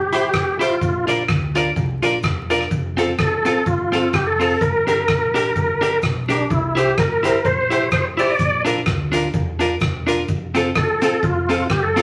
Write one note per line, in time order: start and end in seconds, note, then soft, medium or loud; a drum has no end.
0.00 0.27 A1 loud
0.00 0.57 G4 loud
0.13 0.27 E4 medium
0.13 0.23 E4 medium
0.13 0.23 G4 medium
0.13 0.28 G4 medium
0.13 0.23 C5 medium
0.13 0.28 C5 medium
0.13 closed hi-hat medium
0.13 cabasa medium
0.33 0.74 A1 medium
0.33 kick loud
0.33 cross-stick loud
0.33 cabasa medium
0.59 0.74 E4 medium
0.59 0.70 E4 medium
0.59 1.06 F4 medium
0.59 0.75 G4 medium
0.59 0.70 G4 medium
0.59 0.75 C5 medium
0.59 0.71 C5 loud
0.59 closed hi-hat medium
0.59 cabasa medium
0.81 1.22 A#1 loud
0.81 kick loud
0.81 cabasa medium
1.07 1.18 D4 medium
1.07 1.22 F4 medium
1.07 1.18 F4 medium
1.07 1.23 A#4 medium
1.07 1.19 A#4 loud
1.07 1.23 D5 medium
1.07 closed hi-hat medium
1.07 cabasa medium
1.28 1.69 D2 medium
1.28 muted clean electric guitar stroke soft
1.28 kick loud
1.28 cross-stick loud
1.28 cabasa medium
1.55 1.65 D4 medium
1.55 1.70 F4 medium
1.55 1.66 F4 medium
1.55 1.70 A#4 medium
1.55 1.66 A#4 medium
1.55 1.71 D5 loud
1.55 closed hi-hat medium
1.55 cabasa medium
1.76 1.99 C2 loud
1.76 1.82 F4 soft
1.76 1.82 A#4 soft
1.76 kick loud
1.76 cabasa soft
2.02 2.21 A#1 medium
2.02 2.13 D4 medium
2.02 2.17 F4 medium
2.02 2.13 F4 medium
2.02 2.18 A#4 medium
2.02 2.13 A#4 loud
2.02 2.18 D5 medium
2.02 closed hi-hat loud
2.02 cabasa medium
2.23 2.64 E1 medium
2.23 kick loud
2.23 cross-stick loud
2.23 cabasa medium
2.50 2.60 D4 medium
2.50 2.65 F4 medium
2.50 2.61 F4 medium
2.50 2.65 A#4 medium
2.50 2.61 A#4 loud
2.50 2.66 D5 medium
2.50 closed hi-hat medium
2.50 cabasa medium
2.61 cross-stick medium
2.71 3.12 F1 loud
2.71 kick loud
2.71 cabasa medium
2.97 3.12 C4 medium
2.97 3.07 C4 loud
2.97 3.08 F4 medium
2.97 3.12 F4 medium
2.97 3.08 A4 loud
2.97 3.13 A4 medium
2.97 closed hi-hat medium
2.97 cabasa medium
3.18 3.59 A1 loud
3.18 3.68 A4 medium
3.18 muted clean electric guitar stroke soft
3.18 kick loud
3.18 cross-stick loud
3.18 cabasa medium
3.45 3.60 C4 medium
3.45 3.55 C4 medium
3.45 3.60 F4 medium
3.45 3.56 F4 medium
3.45 3.56 A4 loud
3.45 3.61 A4 loud
3.45 closed hi-hat medium
3.45 cabasa medium
3.66 4.07 G1 loud
3.66 4.15 F4 medium
3.66 kick loud
3.66 cabasa soft
3.92 4.07 C4 medium
3.92 4.02 C4 medium
3.92 4.07 F4 medium
3.92 4.03 F4 medium
3.92 4.03 A4 loud
3.92 4.08 A4 medium
3.92 closed hi-hat medium
3.92 cabasa medium
4.13 4.54 F1 medium
4.13 4.28 G4 medium
4.13 kick loud
4.13 cross-stick loud
4.13 cabasa medium
4.26 4.62 A4 loud
4.40 4.54 C4 medium
4.40 4.50 C4 medium
4.40 4.50 F4 medium
4.40 4.55 F4 medium
4.40 4.50 A4 loud
4.40 4.55 A4 medium
4.40 cross-stick medium
4.40 open hi-hat medium
4.40 cabasa medium
4.61 5.01 G1 loud
4.61 5.99 A#4 loud
4.61 kick loud
4.61 hi-hat pedal medium
4.61 cabasa medium
4.87 5.01 D4 medium
4.87 4.97 D4 medium
4.87 5.02 G4 medium
4.87 4.98 G4 medium
4.87 4.98 A#4 loud
4.87 5.02 A#4 medium
4.87 closed hi-hat medium
4.87 cabasa medium
5.08 5.49 A#1 loud
5.08 kick loud
5.08 cross-stick loud
5.08 cabasa medium
5.34 5.49 D4 medium
5.34 5.45 D4 medium
5.34 5.49 G4 medium
5.34 5.45 G4 medium
5.34 5.50 A#4 loud
5.34 5.45 A#4 loud
5.34 closed hi-hat loud
5.34 cabasa medium
5.56 5.96 G1 loud
5.56 5.61 G4 soft
5.56 5.61 A#4 soft
5.56 kick loud
5.56 cabasa soft
5.81 5.96 D4 medium
5.81 5.92 D4 medium
5.81 5.96 G4 medium
5.81 5.92 G4 medium
5.81 5.92 A#4 medium
5.81 5.97 A#4 medium
5.81 closed hi-hat medium
5.81 cabasa medium
6.02 6.43 B1 medium
6.02 kick loud
6.02 cross-stick loud
6.02 cabasa medium
6.29 6.43 D4 medium
6.29 6.39 D4 medium
6.29 6.51 D4 medium
6.29 6.44 G4 medium
6.29 6.40 G4 medium
6.29 6.44 A#4 medium
6.29 6.40 A#4 loud
6.29 closed hi-hat medium
6.29 cabasa medium
6.50 6.91 C2 loud
6.50 6.78 E4 medium
6.50 kick loud
6.50 cabasa medium
6.75 6.90 E4 medium
6.75 6.87 E4 medium
6.75 6.91 G4 medium
6.75 6.87 G4 medium
6.75 6.99 G4 medium
6.75 6.91 C5 loud
6.75 6.87 C5 medium
6.75 closed hi-hat medium
6.75 cabasa medium
6.96 7.38 G1 medium
6.96 7.47 A#4 medium
6.96 muted clean electric guitar stroke soft
6.96 kick loud
6.96 cross-stick loud
6.96 cabasa medium
7.23 7.38 E4 medium
7.23 7.34 E4 medium
7.23 7.38 G4 medium
7.23 7.34 G4 medium
7.23 7.39 C5 medium
7.23 7.35 C5 loud
7.23 closed hi-hat loud
7.23 cabasa medium
7.45 7.85 A#1 medium
7.45 7.89 C5 loud
7.45 kick loud
7.45 cabasa soft
7.70 7.85 E4 medium
7.70 7.81 E4 medium
7.70 7.86 G4 medium
7.70 7.82 G4 medium
7.70 7.86 C5 loud
7.70 7.82 C5 loud
7.70 closed hi-hat medium
7.70 cabasa medium
7.91 8.32 A1 medium
7.91 8.05 C5 loud
7.91 kick loud
7.91 cross-stick loud
7.91 cabasa medium
8.17 8.32 E4 medium
8.17 8.28 E4 medium
8.17 8.33 G4 medium
8.17 8.29 G4 medium
8.17 8.33 C5 medium
8.17 8.29 C5 loud
8.17 8.63 D5 loud
8.17 open hi-hat medium
8.17 cabasa medium
8.39 8.80 A#1 loud
8.39 kick loud
8.39 hi-hat pedal medium
8.39 cabasa medium
8.65 8.80 D4 medium
8.65 8.76 D4 medium
8.65 8.80 F4 medium
8.65 8.76 F4 medium
8.65 8.80 A#4 medium
8.65 8.76 A#4 loud
8.65 closed hi-hat medium
8.65 cabasa medium
8.85 9.27 D2 medium
8.85 muted clean electric guitar stroke soft
8.85 kick loud
8.85 cross-stick loud
8.85 cabasa medium
9.12 9.27 D4 medium
9.12 9.23 D4 medium
9.12 9.27 F4 medium
9.12 9.23 F4 medium
9.12 9.28 A#4 medium
9.12 9.24 A#4 loud
9.12 closed hi-hat loud
9.12 cabasa medium
9.34 9.74 E2 loud
9.34 9.39 F4 soft
9.34 9.40 A#4 soft
9.34 kick loud
9.34 cabasa soft
9.59 9.74 D4 medium
9.59 9.70 D4 medium
9.59 9.75 F4 medium
9.59 9.70 F4 medium
9.59 9.75 A#4 medium
9.59 9.71 A#4 loud
9.59 closed hi-hat medium
9.59 cabasa medium
9.80 10.21 E1 medium
9.80 kick loud
9.80 cross-stick loud
9.80 cabasa medium
10.07 10.21 D4 medium
10.07 10.17 D4 medium
10.07 10.17 F4 medium
10.07 10.22 F4 medium
10.07 10.18 A#4 loud
10.07 10.22 A#4 medium
10.07 closed hi-hat loud
10.07 cabasa medium
10.28 10.69 F1 loud
10.28 kick loud
10.28 cabasa medium
10.55 10.69 C4 medium
10.55 10.65 C4 loud
10.55 10.65 F4 medium
10.55 10.70 F4 loud
10.55 10.65 A4 loud
10.55 10.70 A4 loud
10.55 closed hi-hat medium
10.55 cabasa medium
10.75 11.16 A1 loud
10.75 11.25 A4 medium
10.75 kick loud
10.75 cross-stick loud
10.75 cabasa medium
11.02 11.16 C4 medium
11.02 11.12 C4 medium
11.02 11.12 F4 medium
11.02 11.17 F4 loud
11.02 11.12 A4 loud
11.02 11.17 A4 loud
11.02 closed hi-hat loud
11.02 cabasa medium
11.23 11.63 F1 loud
11.23 11.68 F4 medium
11.23 kick loud
11.23 cabasa soft
11.49 11.64 C4 medium
11.49 11.59 C4 medium
11.49 11.59 F4 medium
11.49 11.64 F4 medium
11.49 11.60 A4 loud
11.49 11.65 A4 medium
11.49 closed hi-hat medium
11.49 cabasa medium
11.70 12.02 F#1 loud
11.70 11.84 G4 loud
11.70 kick loud
11.70 cross-stick loud
11.70 cabasa medium
11.83 12.02 A4 loud
11.96 12.02 C4 medium
11.96 12.02 F4 medium
11.96 12.02 A4 medium
11.96 cross-stick medium
11.96 closed hi-hat medium
11.96 cabasa medium